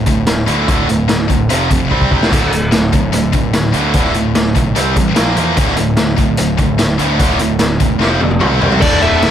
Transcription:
0.06 picked electric bass D1, distorted electric guitar D2 A2, kick, closed hi-hat
0.27 picked electric bass D1, distorted electric guitar D2 A2, snare, closed hi-hat
0.46 distorted electric guitar D2 A2 D3, picked electric bass D2, closed hi-hat
0.66 picked electric bass D1, distorted electric guitar D2 A2 D3, kick, closed hi-hat
0.87 picked electric bass D1, distorted electric guitar D2 A2, closed hi-hat
1.08 picked electric bass D1, distorted electric guitar D2 A2, snare, closed hi-hat
1.28 picked electric bass D1, distorted electric guitar D2 A2, kick, closed hi-hat
1.49 picked electric bass F1, distorted electric guitar F2 C3 F3, closed hi-hat
1.69 picked electric bass F1, distorted electric guitar F2 C3, kick, closed hi-hat
1.90 picked electric bass C2, distorted electric guitar C3 G3 C4, kick
2.01 kick
2.10 picked electric bass E1, distorted electric guitar C3 G3 C4, kick
2.22 snare
2.31 picked electric bass D1, distorted electric guitar D2 A2 D3, kick, closed hi-hat, crash
2.51 picked electric bass D1, distorted electric guitar D2 A2, closed hi-hat
2.71 picked electric bass D1, distorted electric guitar D2 A2, snare, closed hi-hat
2.92 picked electric bass D1, distorted electric guitar D2 A2, kick, closed hi-hat
3.12 picked electric bass D1, distorted electric guitar D2 A2, closed hi-hat
3.32 picked electric bass D1, distorted electric guitar D2 A2, kick, closed hi-hat
3.53 picked electric bass D1, distorted electric guitar D2 A2, snare, closed hi-hat
3.72 distorted electric guitar D2 A2 D3, picked electric bass D2, closed hi-hat
3.93 picked electric bass D1, distorted electric guitar D2 A2 D3, kick, closed hi-hat
4.04 snare
4.14 picked electric bass D1, distorted electric guitar D2 A2, closed hi-hat
4.35 picked electric bass D1, distorted electric guitar D2 A2, snare, closed hi-hat
4.55 picked electric bass B1, distorted electric guitar D2 A2, kick, closed hi-hat
4.75 picked electric bass C2, distorted electric guitar C3 G3 C4, closed hi-hat
4.96 picked electric bass A1, distorted electric guitar C3 G3, kick, closed hi-hat
5.15 picked electric bass A#1, distorted electric guitar A#2 F3 A#3, snare, closed hi-hat
5.36 picked electric bass E2, distorted electric guitar A#2 F3 A#3, closed hi-hat
5.55 picked electric bass D1, distorted electric guitar D2 A2 D3, kick, closed hi-hat
5.67 snare
5.76 picked electric bass D1, distorted electric guitar D2 A2, closed hi-hat
5.97 picked electric bass D1, distorted electric guitar D2 A2, snare, closed hi-hat
6.17 picked electric bass D1, distorted electric guitar D2 A2, kick, closed hi-hat
6.37 picked electric bass D1, distorted electric guitar D2 A2, closed hi-hat
6.57 picked electric bass D1, distorted electric guitar D2 A2, kick, closed hi-hat
6.78 picked electric bass D1, distorted electric guitar D2 A2, snare, closed hi-hat
6.98 distorted electric guitar D2 A2 D3, picked electric bass D2, closed hi-hat
7.18 picked electric bass D1, distorted electric guitar D2 A2 D3, kick, closed hi-hat
7.29 snare
7.39 picked electric bass D1, distorted electric guitar D2 A2, closed hi-hat
7.59 picked electric bass D1, distorted electric guitar D2 A2, snare, closed hi-hat
7.80 picked electric bass E1, distorted electric guitar D2 A2, kick, closed hi-hat
7.99 picked electric bass F1, distorted electric guitar F2 C3 F3, snare
8.20 picked electric bass F1, distorted electric guitar F2 C3, high tom
8.31 high tom
8.40 picked electric bass C2, distorted electric guitar C3 G3 C4, mid tom
8.60 picked electric bass C2, distorted electric guitar C3 G3 C4, floor tom
8.72 floor tom
8.80 picked electric bass D1, distorted electric guitar D2 A2 D3, lead electric guitar A4 D5, kick, crash
9.01 picked electric bass D1, distorted electric guitar D2 A2 D3, lead electric guitar A4 E5, crash
9.21 picked electric bass D1, distorted electric guitar D2 A2 D3, snare, crash

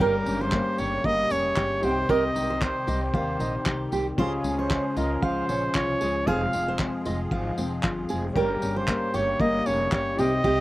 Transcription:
0.00 upright bass G1, accordion C#3 G3 A#3 G4, nylon-string guitar G3 G4, upright piano C#4 G4 A#4 G5, steel-string acoustic guitar A#4, trumpet A#4, kick
0.26 upright bass G1, nylon-string guitar C#4, tambourine
0.41 steel-string acoustic guitar C5, trumpet C5
0.52 nylon-string guitar A#3, kick, clap
0.78 upright bass G1, nylon-string guitar G4, trumpet C#5, steel-string acoustic guitar C#5, tambourine
1.04 upright bass G1, nylon-string guitar A#3, steel-string acoustic guitar D#5, trumpet D#5, kick
1.30 upright bass F1, nylon-string guitar C#4, steel-string acoustic guitar C#5, trumpet C#5, tambourine
1.56 upright bass G1, nylon-string guitar G4, kick, clap
1.81 upright bass C2, nylon-string guitar C3, accordion D#3 C4, upright piano D#4 G4 C5, steel-string acoustic guitar G4, trumpet C5, tambourine
1.85 upright piano F#5
1.91 upright piano G5
2.09 upright bass C2, nylon-string guitar C3 G4, steel-string acoustic guitar A#4, trumpet D#5, kick
2.35 upright bass C2, nylon-string guitar D#4, tambourine
2.50 steel-string acoustic guitar C5
2.61 nylon-string guitar C4, trumpet C5, kick, clap
2.87 upright bass C2, nylon-string guitar G4, steel-string acoustic guitar D#5, tambourine
3.03 trumpet C5
3.14 upright bass D#2, nylon-string guitar D#3, steel-string acoustic guitar F5, kick
3.39 upright bass A#1, nylon-string guitar D#4, steel-string acoustic guitar D#5, tambourine
3.66 upright bass C2, nylon-string guitar G4, kick, clap
3.92 upright bass C2, nylon-string guitar C4, steel-string acoustic guitar G4, tambourine
4.16 upright bass C#2, nylon-string guitar C#3 F4, accordion F3 G#3 C#4 G#4, upright piano C#4 F4 G#4 F5, steel-string acoustic guitar C5, kick
4.20 trumpet G#4
4.44 upright bass C#2, nylon-string guitar C#4, tambourine
4.59 trumpet C5, steel-string acoustic guitar C#5
4.70 nylon-string guitar G#3, kick, clap
4.96 upright bass C#2, nylon-string guitar F4, trumpet A#4, steel-string acoustic guitar D#5, tambourine
5.22 upright bass C#2, nylon-string guitar F3, trumpet C5, steel-string acoustic guitar F5, kick
5.49 upright bass A#1, nylon-string guitar C#4, steel-string acoustic guitar C#5, tambourine
5.75 upright bass C2, nylon-string guitar F4, trumpet C#5, kick, clap
6.01 upright bass C#2, nylon-string guitar G#3, steel-string acoustic guitar G#4, tambourine
6.25 upright bass F1, nylon-string guitar F2 F4, accordion G#3 C4 G#4, upright piano C4 F4 G4, steel-string acoustic guitar G#4, trumpet F5, kick
6.29 upright piano F5
6.34 upright piano G#4
6.53 upright bass F1, nylon-string guitar C4, tambourine
6.68 steel-string acoustic guitar C5
6.79 nylon-string guitar G#3, kick, clap
7.05 upright bass F1, nylon-string guitar F4, steel-string acoustic guitar D#5, tambourine
7.31 upright bass G#1, nylon-string guitar F3, steel-string acoustic guitar F5, kick
7.58 upright bass F1, nylon-string guitar C4, steel-string acoustic guitar C5, tambourine
7.83 upright bass G1, nylon-string guitar F4, kick, clap
8.09 upright bass F1, nylon-string guitar G#3, steel-string acoustic guitar G#4, tambourine
8.33 upright bass G1, accordion C#3 G3 A#3 G4, nylon-string guitar G3, upright piano C#4 G4 A#4, steel-string acoustic guitar A#4, kick
8.37 nylon-string guitar G4, trumpet A#4, upright piano G5
8.62 upright bass G1, nylon-string guitar C#4, tambourine
8.76 steel-string acoustic guitar C5, trumpet C5
8.88 nylon-string guitar A#3, kick, clap
9.14 upright bass G1, nylon-string guitar G4, steel-string acoustic guitar C#5, trumpet C#5, tambourine
9.40 upright bass G1, nylon-string guitar A#3, steel-string acoustic guitar D#5, trumpet D#5, kick
9.66 upright bass F1, nylon-string guitar C#4, trumpet C#5, steel-string acoustic guitar C#5, tambourine
9.92 upright bass G1, nylon-string guitar G4, trumpet C#5, kick, clap
10.15 upright bass C2, nylon-string guitar C3, accordion D#3 C4, upright piano D#4 G4 C5, steel-string acoustic guitar G4, trumpet D#5, tambourine
10.19 upright piano G5
10.44 upright bass C2, nylon-string guitar C3 G4, steel-string acoustic guitar G4, kick

